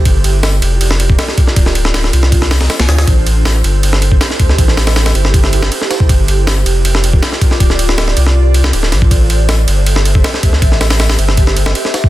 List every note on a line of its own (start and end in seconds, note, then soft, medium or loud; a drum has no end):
0.00 1.53 G4 medium
0.05 0.61 G1 loud
0.05 3.05 F4 medium
0.05 kick loud
0.05 ride medium
0.24 ride medium
0.43 snare loud
0.43 open hi-hat medium
0.62 1.17 F1 medium
0.62 ride medium
0.81 ride medium
0.91 snare medium
1.00 ride medium
1.10 kick medium
1.19 snare loud
1.19 ride medium
1.28 snare soft
1.38 kick loud
1.38 ride medium
1.47 snare soft
1.56 2.12 D1 loud
1.56 6.05 C5 loud
1.56 kick loud
1.56 ride medium
1.66 snare soft
1.75 ride medium
1.85 snare medium
1.94 snare loud
1.94 ride medium
2.04 snare soft
2.13 2.68 C2 medium
2.13 ride medium
2.23 snare soft
2.32 kick loud
2.32 ride medium
2.42 snare medium
2.51 snare loud
2.51 open hi-hat medium
2.61 snare loud
2.61 open hi-hat medium
2.70 snare loud
2.70 open hi-hat medium
2.79 2.88 C2 medium
2.79 snare loud
2.79 open hi-hat medium
2.89 3.06 D2 medium
2.89 snare loud
2.89 open hi-hat medium
2.98 snare loud
2.98 open hi-hat medium
3.07 3.63 A1 loud
3.07 6.06 E4 medium
3.07 7.56 G4 medium
3.07 6.06 A4 medium
3.07 kick loud
3.07 ride medium
3.27 ride medium
3.45 snare loud
3.45 open hi-hat medium
3.64 4.19 G1 loud
3.64 ride medium
3.83 ride medium
3.93 snare medium
4.02 ride medium
4.12 kick medium
4.21 snare loud
4.21 ride medium
4.31 snare soft
4.40 4.57 D2 medium
4.40 kick loud
4.40 ride medium
4.49 snare soft
4.58 5.14 A1 loud
4.58 kick loud
4.58 ride medium
4.68 snare soft
4.77 snare loud
4.77 open hi-hat medium
4.87 snare loud
4.87 open hi-hat medium
4.96 snare loud
4.96 open hi-hat medium
5.06 snare loud
5.06 open hi-hat medium
5.15 5.70 G1 loud
5.15 ride medium
5.25 snare soft
5.34 kick loud
5.34 ride medium
5.44 snare medium
5.53 ride medium
5.63 snare loud
5.72 ride medium
5.81 snare soft
5.91 snare soft
5.91 ride medium
6.00 6.08 C2 medium
6.00 kick medium
6.09 6.64 G1 loud
6.09 9.08 F4 medium
6.09 9.08 D5 medium
6.09 kick loud
6.09 ride medium
6.28 ride medium
6.47 snare loud
6.47 open hi-hat medium
6.66 7.21 F1 medium
6.66 ride medium
6.85 ride medium
6.95 snare medium
7.04 ride medium
7.13 kick medium
7.23 snare loud
7.23 ride medium
7.32 snare soft
7.41 kick loud
7.41 ride medium
7.51 snare soft
7.60 8.15 D1 loud
7.60 12.09 A4 medium
7.60 12.09 C5 medium
7.60 kick loud
7.60 ride medium
7.70 snare soft
7.79 ride medium
7.89 snare medium
7.98 snare loud
7.98 ride medium
8.08 snare soft
8.17 8.72 C2 loud
8.17 ride medium
8.27 snare soft
8.54 ride medium
8.64 snare loud
8.73 8.94 D1 loud
8.73 ride medium
8.83 snare soft
8.92 9.09 A1 loud
8.92 snare soft
8.92 ride medium
9.02 kick loud
9.11 9.66 A1 loud
9.11 12.09 G4 medium
9.11 12.09 E5 loud
9.11 kick loud
9.11 ride medium
9.30 ride medium
9.49 snare loud
9.49 open hi-hat medium
9.68 10.23 G1 medium
9.68 ride medium
9.86 ride medium
9.96 snare medium
10.05 ride medium
10.15 kick medium
10.24 snare loud
10.24 ride medium
10.34 snare soft
10.43 10.60 D2 medium
10.43 kick medium
10.43 ride medium
10.53 snare soft
10.62 11.17 A1 loud
10.62 kick loud
10.62 ride medium
10.72 snare soft
10.81 snare loud
10.81 open hi-hat medium
10.90 snare loud
10.90 open hi-hat medium
11.00 snare loud
11.00 open hi-hat medium
11.09 snare loud
11.09 open hi-hat medium
11.19 11.74 G1 medium
11.19 ride medium
11.29 snare soft
11.37 kick loud
11.37 ride medium
11.47 snare medium
11.57 ride medium
11.66 snare loud
11.75 ride medium
11.85 snare soft
11.94 snare soft
11.94 ride medium
12.04 12.09 C2 medium
12.04 kick loud